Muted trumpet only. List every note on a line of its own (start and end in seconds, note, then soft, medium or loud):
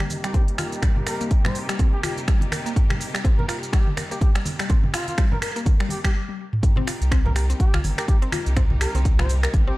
0.24 0.30 G4 medium
0.34 0.43 G4 medium
1.06 1.24 A#4 medium
1.45 1.60 C5 medium
1.93 2.00 G4 medium
2.03 2.12 G4 medium
3.38 3.45 A#4 medium
3.48 3.57 A#4 medium
3.73 3.90 G4 medium
4.11 4.17 G4 medium
4.21 4.30 G4 medium
4.94 5.05 F4 medium
5.08 5.23 F4 medium
5.32 5.39 A#4 medium
5.42 5.51 A#4 medium
5.90 6.00 G4 medium
6.04 6.11 G4 medium
7.26 7.32 A#4 medium
7.36 7.45 A#4 medium
7.60 7.77 G4 medium
7.98 8.04 G4 medium
8.08 8.17 G4 medium
8.81 8.98 A#4 loud
9.19 9.34 C5 loud
9.67 9.74 G4 medium